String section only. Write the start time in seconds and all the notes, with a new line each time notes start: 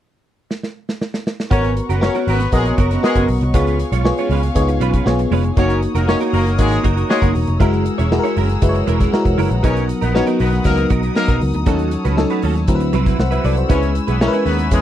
1.50 B3 F#5 A#5 C#6
3.53 F5 G#5
5.57 C#5 F#5 A#5 D#6
7.60 G#4 E6
9.63 B3 D#6
11.67 C#5 A5
12.68 C4 F#5 B5 E6
13.70 C#5 G#5 B5